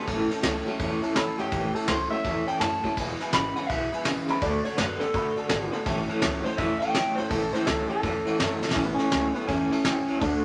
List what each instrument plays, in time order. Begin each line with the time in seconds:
Already playing: clean electric guitar A4
0.07 upright bass A1, steel-string acoustic guitar A2 E3 A3 C#4 E4, clean electric guitar A2 E3, upright piano C#5 E5 A5, kick, ride
0.29 clean electric guitar A2 E3, steel-string acoustic guitar A3 C#4 E4, upright piano C#5 E5 A5, muted upright bass stroke, snare, ride
0.43 upright bass C#2, steel-string acoustic guitar A2 E3 A3 C#4 E4, clean electric guitar A2 F#3, upright piano C#5 E5 A5, snare, ride
0.65 clean electric guitar A2 F#3, steel-string acoustic guitar C#4 E4, upright piano C#5 E5 A5, muted upright bass stroke, ride
0.69 steel-string acoustic guitar A3
0.78 upright bass E2, clean electric guitar A2 E3, steel-string acoustic guitar E3 A3 C#4 E4, upright piano C#5 E5 A5, kick, ride
1.02 clean electric guitar A2 E3, steel-string acoustic guitar A3 C#4 E4, upright piano C#5 E5 A5, muted upright bass stroke, ride
1.15 upright bass E2, clean electric guitar A2 F#3 A4, steel-string acoustic guitar A2 E3 C#4 E4, upright piano C#5 E5 B5, snare, ride
1.38 upright bass G2, clean electric guitar A2 F#3 G4, steel-string acoustic guitar A3 C#4 E4, upright piano C#5 E5 A5, snare, ride
1.51 upright bass A1, steel-string acoustic guitar A2 E3 A3 C#4 E4, clean electric guitar A2 E3, upright piano C#5 E5 A5, kick, snare, ride
1.74 clean electric guitar A2 E3 A4, steel-string acoustic guitar C#4 E4, upright piano C#5 E5 A5, muted upright bass stroke, ride
1.78 steel-string acoustic guitar A3
1.88 upright bass C#2, clean electric guitar A2 F#3 C5, steel-string acoustic guitar A2 E3 A3 C#4 E4, upright piano E5 A5, snare, ride
2.09 clean electric guitar A2 F#3 E5, steel-string acoustic guitar C#4 E4, upright piano C#5 E5 A5, muted upright bass stroke, ride
2.15 steel-string acoustic guitar A3
2.23 upright bass E2, clean electric guitar A2 E3, steel-string acoustic guitar E3 A3, upright piano C#5 E5 A5, kick, ride
2.28 steel-string acoustic guitar C#4 E4
2.46 clean electric guitar E3 G5, steel-string acoustic guitar C#4 E4, upright piano C#5 E5 A5, muted upright bass stroke, ride
2.52 steel-string acoustic guitar A3
2.60 upright bass F#2, steel-string acoustic guitar A2 E3 A3 C#4 E4, clean electric guitar A2 F#3 A5, upright piano C#5 E5 A5, snare, ride
2.83 clean electric guitar A2 F#3, steel-string acoustic guitar A3 C#4 E4, upright piano C#5 E5 A5, muted upright bass stroke, kick, ride
2.97 upright bass E1, steel-string acoustic guitar E2 B2 E3 G#3 B3 E4, clean electric guitar E2 B2, upright piano B4 E5 G#5, kick, ride
3.20 clean electric guitar E2 B2, steel-string acoustic guitar E3 G#3 B3 E4, upright piano B4 E5 G#5, muted upright bass stroke, snare, ride
3.33 upright bass G#1, steel-string acoustic guitar E2 B2 E3 G#3 B3 E4, clean electric guitar E2 C#3 B5, upright piano B4 G#5, snare, ride
3.55 clean electric guitar E2 C#3 F#5, steel-string acoustic guitar G#3 B3 E4, upright piano B4 E5 G#5, muted upright bass stroke, ride
3.59 steel-string acoustic guitar E3
3.69 upright bass B1, clean electric guitar E2 B2 E5, steel-string acoustic guitar E3 G#3 B3 E4, upright piano B4 E5 G#5, kick, ride
3.92 clean electric guitar E2 B2, steel-string acoustic guitar E3 G#3 B3 E4, upright piano B4 E5 G#5, muted upright bass stroke, ride
4.05 upright bass B1, clean electric guitar E2 C#3, steel-string acoustic guitar E2 B2 E3 G#3 B3 E4, upright piano B4 E5 G#5, snare, ride
4.28 upright bass C#2, clean electric guitar E2 C#3, steel-string acoustic guitar E3 G#3 B3 E4, upright piano B4 E5 B5, snare, ride
4.41 upright bass D2, clean electric guitar D3 A3 D5, steel-string acoustic guitar D3 A3 D4 F#4, upright piano D5 F#5 A5, kick, ride
4.64 clean electric guitar D3 A3 C#5, steel-string acoustic guitar D4 F#4, upright piano D5 F#5 A5, muted upright bass stroke, ride
4.77 upright bass F#2, clean electric guitar D3 B3 B4, steel-string acoustic guitar D3 A3 D4 F#4, upright piano D5 F#5 A5, snare, ride
5.00 clean electric guitar D3 B3 A4, steel-string acoustic guitar A3 D4 F#4, upright piano D5 F#5 A5, muted upright bass stroke, snare, ride
5.13 upright bass A2, steel-string acoustic guitar D3 A3 D4 F#4, clean electric guitar D3 A3, upright piano D5 F#5 B5, kick, ride
5.36 clean electric guitar A3, steel-string acoustic guitar A3 D4 F#4, upright piano D5 F#5 A5, muted upright bass stroke, ride
5.49 upright bass G#1, clean electric guitar D3 B3, steel-string acoustic guitar D3 A3 D4 F#4, upright piano D5 F#5 A5, snare, ride
5.72 clean electric guitar D3 B3, steel-string acoustic guitar A3 D4 F#4, upright piano D5 F#5 A5, muted upright bass stroke, ride
5.85 upright bass A1, steel-string acoustic guitar A2 E3 A3 C#4 E4, clean electric guitar A2 E3, upright piano C#5 E5 A5, kick, snare, ride
6.07 clean electric guitar A2 E3, steel-string acoustic guitar E4, upright piano C#5 E5 A5, ride
6.11 steel-string acoustic guitar A3 C#4, muted upright bass stroke
6.20 steel-string acoustic guitar A2 E3 A3 C#4 E4, clean electric guitar A2 F#3, upright piano C#5 E5 A5, snare, ride
6.24 upright bass C#2
6.42 clean electric guitar A2 F#3 C5, steel-string acoustic guitar E4, upright piano C#5 E5 A5, muted upright bass stroke, ride
6.47 steel-string acoustic guitar A3 C#4
6.57 upright bass E2, clean electric guitar A2 E3 E5, steel-string acoustic guitar E3 A3 C#4 E4, upright piano C#5 E5 A5, kick, ride
6.80 clean electric guitar A2 E3 G5, steel-string acoustic guitar C#4 E4, upright piano C#5 E5 A5, muted upright bass stroke, ride
6.84 steel-string acoustic guitar A3
6.94 upright bass E2, steel-string acoustic guitar A2 E3 A3 C#4 E4, clean electric guitar A2 F#3, upright piano C#5 E5 A5, snare, ride
7.16 upright bass G2, clean electric guitar A2 F#3 C5, steel-string acoustic guitar C#4 E4, upright piano C#5 E5 A5, ride
7.21 steel-string acoustic guitar A3
7.29 upright bass A1, steel-string acoustic guitar A2 E3 A3 C#4, clean electric guitar A2 E3 A4, upright piano C#5 E5 A5, kick, ride
7.33 steel-string acoustic guitar E4
7.53 clean electric guitar A2 E3 C5, steel-string acoustic guitar C#4 E4, upright piano C#5 E5 A5, muted upright bass stroke, snare, ride
7.57 steel-string acoustic guitar A3
7.66 upright bass C#2, steel-string acoustic guitar A2 E3 A3 C#4 E4, clean electric guitar A2 F#3 A4, upright piano C#5 E5 A5, snare, ride
7.89 clean electric guitar A2 F#3 A4, steel-string acoustic guitar A3 C#4 E4, upright piano C#5 E5 G5, muted upright bass stroke, ride
8.02 upright bass E2, clean electric guitar A2 E3, steel-string acoustic guitar E3 A3 C#4 E4, upright piano C#5 E5 A5, kick, ride
8.25 clean electric guitar A2 E3, steel-string acoustic guitar A3 C#4 E4, upright piano C#5 E5 F#5, muted upright bass stroke, ride
8.37 upright bass F#2, steel-string acoustic guitar A2 E3 A3 C#4 E4, clean electric guitar A2 F#3, upright piano C#5 E5 A5, snare, ride
8.61 clean electric guitar A2 F#3, steel-string acoustic guitar A3 C#4 E4, upright piano C#5 E5 A5, muted upright bass stroke, snare
8.71 steel-string acoustic guitar A2 E3, snare
8.75 upright bass A1, clean electric guitar A2 E3 C#4, steel-string acoustic guitar A3 C#4 E4, upright piano C#5 E5 A5, kick, ride
8.85 clean electric guitar B3
8.94 clean electric guitar C#4, steel-string acoustic guitar E4
8.98 clean electric guitar A2 E3, steel-string acoustic guitar A3 C#4, upright piano C#5 E5 A5, muted upright bass stroke, snare, ride
9.10 upright bass C#2, steel-string acoustic guitar A2 E3 A3 C#4 E4, clean electric guitar A2 F#3, upright piano C#5 E5 A5, snare, ride
9.33 clean electric guitar A2 F#3 B3, steel-string acoustic guitar A3 C#4 E4, upright piano C#5 E5, muted upright bass stroke, ride
9.37 upright piano A5
9.45 upright bass E2, clean electric guitar A2 E3 C#4, steel-string acoustic guitar E3 A3 C#4 E4, upright piano C#5, kick, ride
9.49 upright piano E5 A5
9.70 clean electric guitar A2 E3, steel-string acoustic guitar A3 C#4 E4, upright piano C#5 E5 A5, muted upright bass stroke, ride
9.84 upright bass E2, clean electric guitar A2 F#3 C#4, steel-string acoustic guitar A2 E3 A3 C#4 E4, upright piano C#5 E5 G5, snare, ride
10.06 upright bass C#2, clean electric guitar A2 F#3, steel-string acoustic guitar A3 C#4 E4, upright piano C#5 E5, ride
10.11 upright piano A5
10.21 upright bass D2, steel-string acoustic guitar D3 A3 D4 F#4, clean electric guitar D3 A3 D4, upright piano D5 F#5 A5, kick, ride